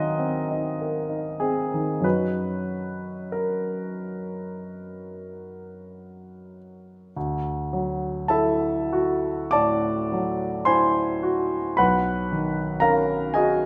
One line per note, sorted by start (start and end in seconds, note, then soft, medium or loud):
0.00 1.74 D#3 soft
0.00 2.02 F#3 soft
0.00 0.19 C4 soft
0.00 0.51 D#4 soft
0.00 0.82 A#4 soft
0.00 1.39 D#5 medium
0.00 2.06 F5 soft
0.00 2.07 F#5 medium
0.00 2.06 G#5 soft
0.00 2.07 A#5 medium
0.00 2.06 C6 soft
0.19 0.66 C4 soft
0.51 0.98 D#4 soft
0.82 1.29 A#4 soft
1.10 1.59 D#4 soft
1.40 1.91 C4 soft
1.40 2.04 G#4 medium
1.74 2.05 D#3 soft
2.01 7.10 F#2 soft
2.01 7.11 F#3 soft
2.01 7.11 C#4 soft
2.01 7.12 D#4 soft
2.01 7.12 F#4 soft
2.01 3.33 B4 soft
3.32 6.56 A#4 soft
7.16 9.49 D2 soft
7.73 8.66 F#3 soft
8.28 9.28 E4 soft
8.28 9.48 A4 soft
8.28 9.49 E5 soft
8.28 9.51 A5 medium
8.93 9.89 F#4 soft
9.51 10.46 A2 soft
9.51 10.63 D5 medium
9.51 10.63 A5 medium
9.51 10.66 D6 medium
10.12 11.01 F#3 soft
10.65 11.57 E4 soft
10.65 11.74 C5 medium
10.65 11.74 G#5 medium
10.65 11.78 C6 medium
11.23 11.78 F#4 soft
11.77 13.66 B1 soft
11.77 12.79 B4 medium
11.77 12.79 F#5 medium
11.77 12.82 B5 medium
12.32 13.14 D#3 soft
12.80 13.66 C#4 soft
12.80 13.31 A#4 medium
12.80 13.30 F5 medium
12.80 13.33 A#5 medium
13.34 13.66 F#4 soft
13.34 13.66 G#4 soft
13.34 13.66 D#5 soft
13.34 13.66 G#5 medium